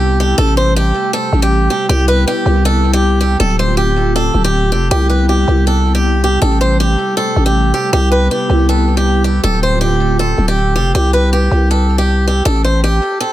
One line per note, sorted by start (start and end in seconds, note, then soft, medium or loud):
0.00 0.34 C2 loud
0.00 1.86 C3 medium
0.00 3.36 G3 medium
0.00 0.37 B3 medium
0.00 0.37 E4 medium
0.00 0.17 G4 medium
0.20 0.35 G4 medium
0.38 0.93 A1 loud
0.38 1.88 A3 medium
0.38 0.53 A4 loud
0.57 0.72 C5 medium
0.76 1.12 G4 medium
1.13 1.40 A4 medium
1.33 1.69 A1 loud
1.42 1.69 G4 medium
1.70 1.86 G4 medium
1.89 2.25 C2 loud
1.89 3.39 C3 medium
1.89 3.39 B3 medium
1.89 3.39 E4 medium
1.89 2.05 G4 loud
2.08 2.23 B4 medium
2.28 2.63 G4 medium
2.46 3.36 C2 loud
2.65 2.92 A4 medium
2.93 3.19 G4 medium
3.21 3.36 G4 medium
3.40 4.31 D1 loud
3.40 4.89 D3 medium
3.40 4.89 A3 medium
3.40 4.89 C4 medium
3.40 4.89 F4 medium
3.40 3.55 A4 loud
3.59 3.74 C5 medium
3.77 4.13 G4 medium
4.16 4.42 A4 medium
4.34 4.74 D1 loud
4.44 4.71 G4 medium
4.72 4.90 F1 loud
4.72 4.87 G4 medium
4.91 5.45 C2 loud
4.91 9.40 C3 medium
4.91 9.40 G3 medium
4.91 6.40 B3 medium
4.91 6.40 E4 medium
4.91 5.06 G4 loud
5.10 5.25 B4 medium
5.29 5.64 G4 medium
5.48 6.38 C2 loud
5.67 5.93 A4 medium
5.95 6.21 G4 medium
6.24 6.39 G4 medium
6.42 6.96 A1 loud
6.42 7.91 A3 medium
6.42 6.57 A4 loud
6.61 6.76 C5 medium
6.80 7.15 G4 medium
7.17 7.44 A4 medium
7.36 7.73 A1 loud
7.46 7.72 G4 medium
7.74 7.89 G4 medium
7.93 8.29 C2 loud
7.93 9.42 B3 medium
7.93 9.42 E4 medium
7.93 8.08 G4 loud
8.12 8.27 B4 medium
8.31 8.66 G4 medium
8.50 9.40 C2 loud
8.69 8.95 A4 medium
8.97 9.23 G4 medium
9.24 9.40 G4 medium
9.44 10.34 D1 loud
9.44 10.93 D3 medium
9.44 10.93 A3 medium
9.44 10.93 C4 medium
9.44 10.93 F4 medium
9.44 9.59 A4 loud
9.63 9.78 C5 medium
9.81 10.17 G4 medium
10.19 10.46 A4 medium
10.38 10.77 D1 loud
10.48 10.74 G4 medium
10.76 10.94 F1 loud
10.76 10.91 G4 medium
10.95 11.49 C2 loud
10.95 11.10 G4 loud
11.13 11.29 B4 medium
11.33 11.68 G4 medium
11.51 12.42 C2 loud
11.71 11.97 A4 medium
11.98 12.25 G4 medium
12.27 12.43 G4 medium
12.45 13.00 A1 loud
12.45 12.61 A4 loud
12.64 12.80 C5 medium
12.84 13.19 G4 medium
13.20 13.33 A4 medium